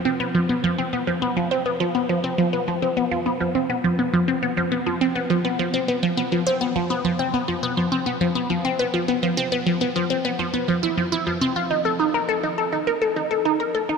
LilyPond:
\new Staff \with { instrumentName = "Synth arpeggio sound" } { \time 4/4 \key c \major \tempo 4 = 103 c'16 b16 f16 b16 f16 c'16 b16 f16 b16 f16 c'16 b16 f16 b16 f16 c'16 | f16 b16 f16 c'16 b16 f16 b16 f16 c'16 b16 f16 b16 f16 c'16 b16 f16 | b16 f16 c'16 b16 f16 b16 f16 c'16 b16 f16 b16 f16 c'16 b16 f16 b16 | f16 c'16 b16 f16 b16 f16 c'16 b16 f16 b16 f16 c'16 b16 f16 b16 f16 |
c'16 b16 f16 b16 f16 c'16 b16 f16 b16 f16 e'16 f16 e'16 f16 c'16 f'16 | \key c \dorian ees'16 a'16 ees'16 bes'16 a'16 ees'16 a'16 ees'16 bes'16 a'16 ees'16 a'16 ees'16 bes'16 a'16 ees'16 | }